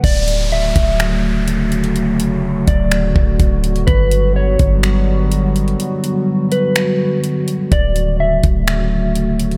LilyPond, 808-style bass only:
\new Staff \with { instrumentName = "808-style bass" } { \clef bass \time 4/4 \key d \major \tempo 4 = 125 d,,4. d,,2~ d,,8~ | d,,8 e,,8 d,,8 d,,4 d,,8 d,,4 | g,,4. g,,2~ g,,8 | r1 |
d,,4. d,,2~ d,,8 | }